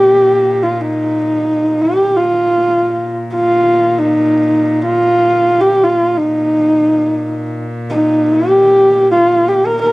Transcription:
0, 0, Header, 1, 3, 480
1, 0, Start_track
1, 0, Tempo, 500000
1, 9527, End_track
2, 0, Start_track
2, 0, Title_t, "Horsehead fiddle"
2, 0, Program_c, 0, 110
2, 0, Note_on_c, 0, 67, 95
2, 604, Note_on_c, 0, 65, 77
2, 618, Note_off_c, 0, 67, 0
2, 780, Note_on_c, 0, 63, 78
2, 794, Note_off_c, 0, 65, 0
2, 1743, Note_on_c, 0, 67, 77
2, 1758, Note_off_c, 0, 63, 0
2, 2081, Note_on_c, 0, 65, 73
2, 2095, Note_off_c, 0, 67, 0
2, 2978, Note_off_c, 0, 65, 0
2, 3211, Note_on_c, 0, 65, 83
2, 3826, Note_on_c, 0, 63, 75
2, 3840, Note_off_c, 0, 65, 0
2, 4659, Note_off_c, 0, 63, 0
2, 4665, Note_on_c, 0, 65, 85
2, 5384, Note_on_c, 0, 67, 84
2, 5399, Note_off_c, 0, 65, 0
2, 5604, Note_on_c, 0, 65, 74
2, 5618, Note_off_c, 0, 67, 0
2, 5928, Note_on_c, 0, 63, 76
2, 5942, Note_off_c, 0, 65, 0
2, 7223, Note_off_c, 0, 63, 0
2, 7583, Note_on_c, 0, 63, 76
2, 7999, Note_on_c, 0, 67, 89
2, 8013, Note_off_c, 0, 63, 0
2, 8726, Note_off_c, 0, 67, 0
2, 8750, Note_on_c, 0, 65, 92
2, 9105, Note_on_c, 0, 67, 80
2, 9119, Note_off_c, 0, 65, 0
2, 9278, Note_on_c, 0, 70, 84
2, 9293, Note_off_c, 0, 67, 0
2, 9401, Note_off_c, 0, 70, 0
2, 9423, Note_on_c, 0, 70, 78
2, 9527, Note_off_c, 0, 70, 0
2, 9527, End_track
3, 0, Start_track
3, 0, Title_t, "Cello"
3, 0, Program_c, 1, 42
3, 0, Note_on_c, 1, 46, 56
3, 1995, Note_off_c, 1, 46, 0
3, 2001, Note_on_c, 1, 46, 52
3, 6021, Note_off_c, 1, 46, 0
3, 6027, Note_on_c, 1, 46, 54
3, 9527, Note_off_c, 1, 46, 0
3, 9527, End_track
0, 0, End_of_file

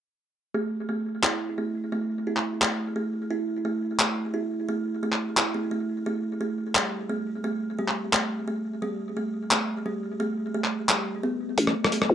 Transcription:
0, 0, Header, 1, 4, 480
1, 0, Start_track
1, 0, Tempo, 344828
1, 760, Time_signature, 4, 2, 24, 8
1, 16910, End_track
2, 0, Start_track
2, 0, Title_t, "Kalimba"
2, 0, Program_c, 0, 108
2, 757, Note_on_c, 0, 57, 80
2, 988, Note_off_c, 0, 57, 0
2, 1236, Note_on_c, 0, 57, 72
2, 1467, Note_off_c, 0, 57, 0
2, 1715, Note_on_c, 0, 64, 81
2, 2176, Note_off_c, 0, 64, 0
2, 2198, Note_on_c, 0, 57, 72
2, 2428, Note_off_c, 0, 57, 0
2, 2676, Note_on_c, 0, 57, 81
2, 2907, Note_off_c, 0, 57, 0
2, 3158, Note_on_c, 0, 64, 72
2, 3618, Note_off_c, 0, 64, 0
2, 3640, Note_on_c, 0, 57, 80
2, 3869, Note_off_c, 0, 57, 0
2, 4117, Note_on_c, 0, 57, 71
2, 4348, Note_off_c, 0, 57, 0
2, 4600, Note_on_c, 0, 64, 78
2, 5059, Note_off_c, 0, 64, 0
2, 5080, Note_on_c, 0, 57, 75
2, 5309, Note_off_c, 0, 57, 0
2, 5557, Note_on_c, 0, 57, 81
2, 5788, Note_off_c, 0, 57, 0
2, 6038, Note_on_c, 0, 64, 71
2, 6498, Note_off_c, 0, 64, 0
2, 6522, Note_on_c, 0, 57, 75
2, 6750, Note_off_c, 0, 57, 0
2, 7001, Note_on_c, 0, 57, 73
2, 7230, Note_off_c, 0, 57, 0
2, 7480, Note_on_c, 0, 64, 80
2, 7699, Note_off_c, 0, 64, 0
2, 7717, Note_on_c, 0, 57, 75
2, 7935, Note_off_c, 0, 57, 0
2, 7952, Note_on_c, 0, 57, 74
2, 8185, Note_off_c, 0, 57, 0
2, 8439, Note_on_c, 0, 57, 78
2, 8669, Note_off_c, 0, 57, 0
2, 8918, Note_on_c, 0, 57, 74
2, 9148, Note_off_c, 0, 57, 0
2, 9396, Note_on_c, 0, 55, 83
2, 9857, Note_off_c, 0, 55, 0
2, 9876, Note_on_c, 0, 57, 74
2, 10107, Note_off_c, 0, 57, 0
2, 10358, Note_on_c, 0, 57, 81
2, 10588, Note_off_c, 0, 57, 0
2, 10837, Note_on_c, 0, 55, 72
2, 11297, Note_off_c, 0, 55, 0
2, 11321, Note_on_c, 0, 57, 77
2, 11550, Note_off_c, 0, 57, 0
2, 11798, Note_on_c, 0, 57, 73
2, 12028, Note_off_c, 0, 57, 0
2, 12279, Note_on_c, 0, 55, 78
2, 12738, Note_off_c, 0, 55, 0
2, 12759, Note_on_c, 0, 57, 72
2, 12989, Note_off_c, 0, 57, 0
2, 13244, Note_on_c, 0, 57, 87
2, 13471, Note_off_c, 0, 57, 0
2, 13721, Note_on_c, 0, 55, 75
2, 14179, Note_off_c, 0, 55, 0
2, 14198, Note_on_c, 0, 57, 84
2, 14428, Note_off_c, 0, 57, 0
2, 14678, Note_on_c, 0, 57, 77
2, 14908, Note_off_c, 0, 57, 0
2, 15156, Note_on_c, 0, 55, 78
2, 15376, Note_off_c, 0, 55, 0
2, 15637, Note_on_c, 0, 59, 76
2, 15786, Note_off_c, 0, 59, 0
2, 16116, Note_on_c, 0, 57, 84
2, 16347, Note_off_c, 0, 57, 0
2, 16592, Note_on_c, 0, 57, 73
2, 16825, Note_off_c, 0, 57, 0
2, 16910, End_track
3, 0, Start_track
3, 0, Title_t, "808-style bass"
3, 0, Program_c, 1, 38
3, 16115, Note_on_c, 1, 33, 100
3, 16341, Note_off_c, 1, 33, 0
3, 16836, Note_on_c, 1, 35, 93
3, 16910, Note_off_c, 1, 35, 0
3, 16910, End_track
4, 0, Start_track
4, 0, Title_t, "Drums"
4, 1714, Note_on_c, 9, 39, 114
4, 1853, Note_off_c, 9, 39, 0
4, 3292, Note_on_c, 9, 39, 36
4, 3431, Note_off_c, 9, 39, 0
4, 3640, Note_on_c, 9, 39, 118
4, 3779, Note_off_c, 9, 39, 0
4, 5559, Note_on_c, 9, 39, 125
4, 5698, Note_off_c, 9, 39, 0
4, 7130, Note_on_c, 9, 39, 35
4, 7269, Note_off_c, 9, 39, 0
4, 7476, Note_on_c, 9, 39, 115
4, 7615, Note_off_c, 9, 39, 0
4, 9395, Note_on_c, 9, 39, 123
4, 9534, Note_off_c, 9, 39, 0
4, 10971, Note_on_c, 9, 39, 36
4, 11110, Note_off_c, 9, 39, 0
4, 11316, Note_on_c, 9, 39, 111
4, 11455, Note_off_c, 9, 39, 0
4, 13237, Note_on_c, 9, 39, 113
4, 13376, Note_off_c, 9, 39, 0
4, 14811, Note_on_c, 9, 39, 34
4, 14951, Note_off_c, 9, 39, 0
4, 15157, Note_on_c, 9, 39, 115
4, 15296, Note_off_c, 9, 39, 0
4, 16114, Note_on_c, 9, 42, 81
4, 16249, Note_on_c, 9, 37, 53
4, 16253, Note_off_c, 9, 42, 0
4, 16388, Note_off_c, 9, 37, 0
4, 16488, Note_on_c, 9, 37, 78
4, 16594, Note_on_c, 9, 42, 62
4, 16627, Note_off_c, 9, 37, 0
4, 16727, Note_on_c, 9, 37, 57
4, 16733, Note_off_c, 9, 42, 0
4, 16866, Note_off_c, 9, 37, 0
4, 16910, End_track
0, 0, End_of_file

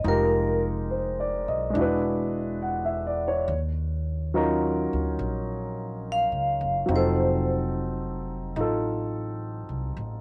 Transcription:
0, 0, Header, 1, 4, 480
1, 0, Start_track
1, 0, Tempo, 857143
1, 25, Time_signature, 4, 2, 24, 8
1, 3385, Tempo, 843882
1, 5754, End_track
2, 0, Start_track
2, 0, Title_t, "Vibraphone"
2, 0, Program_c, 0, 11
2, 47, Note_on_c, 0, 70, 60
2, 352, Note_off_c, 0, 70, 0
2, 3428, Note_on_c, 0, 77, 81
2, 3866, Note_off_c, 0, 77, 0
2, 3904, Note_on_c, 0, 72, 56
2, 4206, Note_off_c, 0, 72, 0
2, 5754, End_track
3, 0, Start_track
3, 0, Title_t, "Grand piano"
3, 0, Program_c, 1, 0
3, 0, Control_c, 1, 64, 127
3, 24, Note_on_c, 1, 56, 55
3, 27, Note_on_c, 1, 63, 52
3, 32, Control_c, 1, 64, 0
3, 35, Note_on_c, 1, 65, 48
3, 42, Note_on_c, 1, 67, 47
3, 47, Note_on_c, 1, 70, 59
3, 118, Control_c, 1, 64, 127
3, 508, Note_on_c, 1, 72, 45
3, 671, Note_on_c, 1, 74, 47
3, 809, Note_off_c, 1, 72, 0
3, 830, Note_on_c, 1, 75, 49
3, 917, Note_off_c, 1, 74, 0
3, 944, Note_off_c, 1, 56, 0
3, 952, Note_on_c, 1, 56, 56
3, 970, Note_on_c, 1, 62, 54
3, 982, Note_off_c, 1, 63, 0
3, 986, Note_off_c, 1, 65, 0
3, 987, Note_on_c, 1, 64, 52
3, 988, Control_c, 1, 64, 0
3, 989, Note_off_c, 1, 67, 0
3, 992, Note_off_c, 1, 70, 0
3, 1000, Note_on_c, 1, 66, 48
3, 1013, Note_on_c, 1, 71, 63
3, 1077, Note_off_c, 1, 75, 0
3, 1083, Control_c, 1, 64, 127
3, 1469, Note_on_c, 1, 78, 43
3, 1597, Note_on_c, 1, 76, 45
3, 1698, Note_off_c, 1, 78, 0
3, 1718, Note_on_c, 1, 74, 43
3, 1802, Note_off_c, 1, 76, 0
3, 1835, Note_on_c, 1, 73, 48
3, 1860, Note_off_c, 1, 74, 0
3, 1934, Note_off_c, 1, 56, 0
3, 1943, Note_off_c, 1, 62, 0
3, 1951, Note_off_c, 1, 64, 0
3, 1955, Control_c, 1, 64, 0
3, 1958, Note_off_c, 1, 66, 0
3, 1964, Note_off_c, 1, 71, 0
3, 2000, Note_off_c, 1, 73, 0
3, 2048, Control_c, 1, 64, 127
3, 2431, Note_on_c, 1, 54, 55
3, 2434, Note_on_c, 1, 61, 51
3, 2436, Note_on_c, 1, 63, 50
3, 2440, Note_on_c, 1, 65, 51
3, 2440, Note_on_c, 1, 70, 63
3, 3840, Note_off_c, 1, 54, 0
3, 3848, Note_on_c, 1, 54, 53
3, 3861, Note_on_c, 1, 60, 49
3, 3866, Note_off_c, 1, 63, 0
3, 3871, Note_off_c, 1, 61, 0
3, 3873, Note_off_c, 1, 70, 0
3, 3874, Note_off_c, 1, 65, 0
3, 3874, Control_c, 1, 64, 0
3, 3875, Note_on_c, 1, 63, 49
3, 3893, Note_on_c, 1, 65, 47
3, 3907, Note_on_c, 1, 69, 56
3, 3989, Control_c, 1, 64, 127
3, 4810, Note_off_c, 1, 63, 0
3, 4818, Note_on_c, 1, 63, 45
3, 4822, Note_off_c, 1, 65, 0
3, 4831, Note_on_c, 1, 65, 46
3, 4833, Note_off_c, 1, 69, 0
3, 4842, Note_on_c, 1, 69, 55
3, 5754, Note_off_c, 1, 54, 0
3, 5754, Note_off_c, 1, 60, 0
3, 5754, Note_off_c, 1, 63, 0
3, 5754, Note_off_c, 1, 65, 0
3, 5754, Note_off_c, 1, 69, 0
3, 5754, End_track
4, 0, Start_track
4, 0, Title_t, "Upright bass"
4, 0, Program_c, 2, 32
4, 25, Note_on_c, 2, 29, 86
4, 806, Note_off_c, 2, 29, 0
4, 828, Note_on_c, 2, 35, 59
4, 970, Note_off_c, 2, 35, 0
4, 979, Note_on_c, 2, 28, 84
4, 1925, Note_off_c, 2, 28, 0
4, 1948, Note_on_c, 2, 39, 79
4, 2733, Note_off_c, 2, 39, 0
4, 2761, Note_on_c, 2, 38, 68
4, 2900, Note_off_c, 2, 38, 0
4, 2906, Note_on_c, 2, 34, 77
4, 3522, Note_off_c, 2, 34, 0
4, 3541, Note_on_c, 2, 37, 54
4, 3693, Note_off_c, 2, 37, 0
4, 3705, Note_on_c, 2, 30, 66
4, 3856, Note_off_c, 2, 30, 0
4, 3863, Note_on_c, 2, 29, 87
4, 4803, Note_off_c, 2, 29, 0
4, 4817, Note_on_c, 2, 33, 79
4, 5438, Note_off_c, 2, 33, 0
4, 5458, Note_on_c, 2, 36, 57
4, 5610, Note_off_c, 2, 36, 0
4, 5615, Note_on_c, 2, 33, 67
4, 5754, Note_off_c, 2, 33, 0
4, 5754, End_track
0, 0, End_of_file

